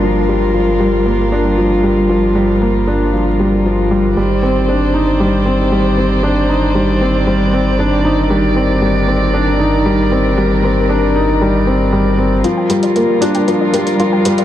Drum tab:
HH |----------------|----------------|----------------|----------------|

HH |----------------|----------------|x-xxx-xxx-xxx-xx|